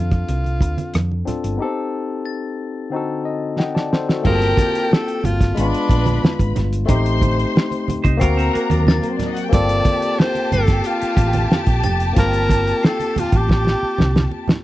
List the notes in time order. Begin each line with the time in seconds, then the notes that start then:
Already playing: F2 C4 D4 F4 A4
0.11 kick, cross-stick, closed hi-hat
0.28 C2, closed hi-hat, muted conga
0.44 closed hi-hat, muted conga
0.61 D2, kick, closed hi-hat
0.78 closed hi-hat, high conga
0.94 F2, cross-stick, closed hi-hat, high conga
1.11 muted conga
1.25 C4 D4 F4 A4, closed hi-hat, low conga
1.29 cross-stick
1.44 G1, closed hi-hat
1.57 B3 D#4 G4
1.62 C4 A4
2.26 A6
2.90 D3 C4 D#4
2.94 F#4 A4
3.25 D#5
3.58 D#5 F#5 G5, snare
3.75 D5 A5, snare
3.93 A4 C5, snare
4.09 F#4 A4, snare
4.23 G1 A#3 C4 G4 A#4 G5, kick, crash, muted conga, low conga
4.27 F4 G#4
4.35 A5
4.42 closed hi-hat, muted conga
4.57 A6, kick, closed hi-hat, high conga
4.75 closed hi-hat
4.91 A4, snare, muted conga
5.08 closed hi-hat
5.24 G1 F4, closed hi-hat, high conga, low conga
5.41 kick, snare, closed hi-hat
5.55 G#1 G#3 B3 D4 B4 B5, closed hi-hat, muted conga
5.59 D4 F4
5.75 closed hi-hat
5.89 A#1, kick, closed hi-hat
6.06 closed hi-hat, high conga
6.24 snare, muted conga, high conga
6.39 G#1, kick, closed hi-hat
6.56 G1, snare, closed hi-hat, low conga
6.73 closed hi-hat
6.86 A1 A3 C4 D#4 C5 C6, kick, closed hi-hat, muted conga, low conga
6.91 G4
7.06 closed hi-hat
7.21 kick, closed hi-hat, high conga
7.39 closed hi-hat
7.56 snare, muted conga
7.71 closed hi-hat, muted conga
7.88 muted fingered electric bass stroke, closed hi-hat, high conga, low conga
8.04 C2 D#4 C5, kick, closed hi-hat
8.17 A#3 C4 F#4 A#4 A#5 C7, closed hi-hat, muted conga
8.21 D2 D4 A#4, kick
8.37 C4 A4, closed hi-hat
8.53 A#3 F#4, muted fingered electric bass stroke, closed hi-hat
8.70 D#2 F#3 D4, closed hi-hat, high conga
8.87 A6, snare, muted conga, high conga
9.01 A#3 A#4, closed hi-hat, muted conga
9.09 C4 C5
9.18 D4 D5, snare, closed hi-hat, low conga
9.28 D#4 D#5
9.35 F#4 F#5, closed hi-hat
9.43 G4 G5
9.49 G1 A#3 C4 G4 A5, kick, closed hi-hat, muted conga, low conga
9.53 F4 A4 D5
9.69 closed hi-hat, muted conga
9.85 kick, closed hi-hat, high conga
10.02 closed hi-hat
10.19 C5, snare, muted conga
10.35 closed hi-hat, muted conga
10.52 G1 A4 C7, closed hi-hat, high conga, low conga
10.67 kick, snare, closed hi-hat
10.84 F4, closed hi-hat
11.02 muted fingered electric bass stroke, closed hi-hat
11.17 A1, kick, closed hi-hat
11.33 closed hi-hat, high conga
11.52 snare, muted conga, high conga
11.66 A#1, kick, closed hi-hat, muted conga
11.83 F1 A6, closed hi-hat, low conga
12.00 closed hi-hat
12.13 G1 A#3 C4 F4, kick, closed hi-hat, muted conga, low conga
12.18 A#4 A5
12.33 closed hi-hat
12.50 kick, closed hi-hat, high conga
12.67 closed hi-hat
12.83 A4 C7, snare
13.00 closed hi-hat, muted conga
13.16 F4, muted fingered electric bass stroke, closed hi-hat, high conga, low conga
13.32 A1, kick, closed hi-hat
13.37 G4
13.48 kick, snare, muted conga
13.65 snare, muted conga
13.83 muted fingered electric bass stroke
13.98 C2, snare, high conga
14.16 snare, muted conga, high conga
14.31 muted conga
14.48 snare, low conga